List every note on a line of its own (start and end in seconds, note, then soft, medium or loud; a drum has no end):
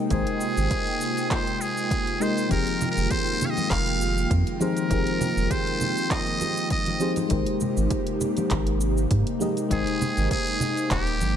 0.00 2.47 C3 medium
0.00 0.09 G#3 medium
0.00 7.27 G#3 medium
0.00 7.27 A#3 medium
0.00 0.10 D#4 medium
0.00 2.21 G4 medium
0.00 0.12 A#4 medium
0.00 2.22 D#5 loud
0.00 7.27 G5 medium
0.09 0.24 G#1 loud
0.09 2.17 G#3 medium
0.09 2.17 D#4 medium
0.09 7.27 F4 medium
0.09 1.33 G#4 loud
0.09 2.18 A#4 medium
0.09 2.18 G5 medium
0.09 kick loud
0.09 closed hi-hat medium
0.09 shaker soft
0.14 2.19 C5 loud
0.27 closed hi-hat soft
0.41 shaker medium
0.57 0.68 G#1 medium
0.57 shaker soft
0.71 kick loud
0.71 closed hi-hat medium
0.71 shaker soft
0.87 closed hi-hat soft
1.01 shaker medium
1.17 closed hi-hat soft
1.17 shaker soft
1.31 1.63 C5 medium
1.31 kick loud
1.31 clap medium
1.31 closed hi-hat medium
1.31 shaker soft
1.47 closed hi-hat soft
1.61 2.24 G#4 loud
1.61 shaker medium
1.77 shaker soft
1.91 kick loud
1.91 closed hi-hat medium
1.91 shaker soft
2.07 closed hi-hat soft
2.20 2.47 G#3 medium
2.20 2.47 D#4 medium
2.20 2.47 G4 medium
2.20 2.48 A#4 medium
2.20 2.51 C5 loud
2.20 2.48 D#5 loud
2.20 shaker medium
2.37 closed hi-hat soft
2.37 shaker soft
2.48 2.64 F1 loud
2.48 7.27 D#3 medium
2.48 4.56 F3 medium
2.48 4.57 C4 medium
2.48 4.57 D#4 medium
2.48 4.58 G4 medium
2.48 4.58 G#4 medium
2.48 2.88 A#4 loud
2.48 kick loud
2.48 closed hi-hat medium
2.48 shaker soft
2.53 4.59 A#4 loud
2.67 closed hi-hat soft
2.81 low conga medium
2.81 shaker medium
2.91 3.12 A#4 loud
2.97 3.08 F1 medium
2.97 shaker soft
3.11 3.47 C5 loud
3.11 kick loud
3.11 closed hi-hat medium
3.11 shaker soft
3.27 closed hi-hat soft
3.41 low conga medium
3.41 shaker medium
3.46 3.52 F5 medium
3.50 3.72 D#5 loud
3.57 closed hi-hat soft
3.57 high conga medium
3.57 shaker soft
3.70 4.26 F1 medium
3.70 4.34 F5 loud
3.70 kick loud
3.70 clap medium
3.70 closed hi-hat medium
3.70 shaker soft
3.87 closed hi-hat soft
4.01 shaker medium
4.18 shaker soft
4.30 4.43 F2 medium
4.30 kick loud
4.30 closed hi-hat medium
4.30 shaker soft
4.47 closed hi-hat soft
4.60 4.87 F3 medium
4.60 4.87 C4 medium
4.60 4.87 D#4 medium
4.60 4.88 G4 medium
4.60 4.88 G#4 medium
4.60 5.53 A#4 medium
4.60 4.88 C5 loud
4.60 high conga medium
4.60 shaker medium
4.77 closed hi-hat soft
4.77 shaker soft
4.89 5.03 F1 loud
4.89 6.97 F3 medium
4.89 6.97 C4 medium
4.89 6.97 D#4 medium
4.89 6.98 G4 medium
4.89 6.98 G#4 medium
4.89 kick loud
4.89 closed hi-hat medium
4.89 shaker soft
4.94 6.99 A#4 loud
5.07 closed hi-hat soft
5.21 low conga medium
5.21 shaker medium
5.37 5.48 F1 medium
5.37 shaker soft
5.51 6.13 C5 loud
5.51 kick loud
5.51 closed hi-hat medium
5.51 shaker soft
5.67 closed hi-hat soft
5.81 low conga medium
5.81 shaker medium
5.97 closed hi-hat soft
5.97 shaker soft
6.11 6.71 D#5 loud
6.11 kick loud
6.11 clap medium
6.11 closed hi-hat medium
6.11 shaker soft
6.27 closed hi-hat soft
6.41 high conga medium
6.41 shaker medium
6.57 shaker soft
6.70 7.14 D#5 loud
6.70 kick loud
6.70 closed hi-hat medium
6.70 shaker soft
6.86 closed hi-hat soft
6.86 high conga medium
7.00 7.27 F3 loud
7.00 7.27 C4 medium
7.00 7.27 D#4 medium
7.00 7.28 G4 medium
7.00 7.28 G#4 medium
7.00 7.28 C5 loud
7.00 shaker medium
7.16 closed hi-hat soft
7.16 high conga medium
7.16 shaker soft
7.28 7.44 G#1 loud
7.28 11.37 C3 medium
7.28 9.36 G#3 loud
7.28 11.37 G#3 medium
7.28 11.37 A#3 medium
7.28 9.37 D#4 medium
7.28 11.37 D#4 medium
7.28 9.37 G4 medium
7.28 9.68 G4 medium
7.28 9.38 A#4 medium
7.28 kick loud
7.28 closed hi-hat medium
7.28 shaker soft
7.33 9.39 C5 loud
7.46 closed hi-hat soft
7.61 low conga medium
7.61 shaker medium
7.77 7.88 G#1 medium
7.77 shaker soft
7.91 kick loud
7.91 closed hi-hat medium
7.91 shaker soft
8.07 closed hi-hat soft
8.21 low conga medium
8.21 shaker medium
8.37 closed hi-hat soft
8.37 high conga medium
8.37 shaker soft
8.51 9.06 G#1 medium
8.51 kick loud
8.51 clap medium
8.51 closed hi-hat medium
8.51 shaker soft
8.67 closed hi-hat soft
8.81 shaker medium
8.97 shaker soft
9.11 9.24 G#2 medium
9.11 kick loud
9.11 closed hi-hat medium
9.11 shaker soft
9.27 closed hi-hat soft
9.39 9.67 G#3 medium
9.39 9.67 D#4 medium
9.39 9.67 G4 medium
9.39 9.68 A#4 medium
9.39 9.68 D#5 loud
9.39 high conga medium
9.39 shaker medium
9.57 closed hi-hat soft
9.57 shaker soft
9.69 9.84 G#1 loud
9.69 11.37 G#3 loud
9.69 11.37 D#4 medium
9.69 10.28 G#4 medium
9.69 11.37 A#4 medium
9.69 11.37 G5 medium
9.69 kick loud
9.69 closed hi-hat medium
9.69 shaker soft
9.73 11.37 C5 loud
9.87 closed hi-hat soft
10.01 low conga medium
10.01 shaker medium
10.17 10.28 G#1 medium
10.17 closed hi-hat soft
10.17 shaker soft
10.31 10.87 G#4 loud
10.31 kick loud
10.31 closed hi-hat medium
10.31 shaker soft
10.47 closed hi-hat soft
10.60 low conga medium
10.60 shaker medium
10.77 closed hi-hat soft
10.77 shaker soft
10.91 11.23 D#1 loud
10.91 11.37 G4 loud
10.91 kick loud
10.91 clap medium
10.91 closed hi-hat medium
10.91 shaker soft
11.07 closed hi-hat soft
11.21 11.37 G#1 medium
11.21 high conga medium
11.21 shaker medium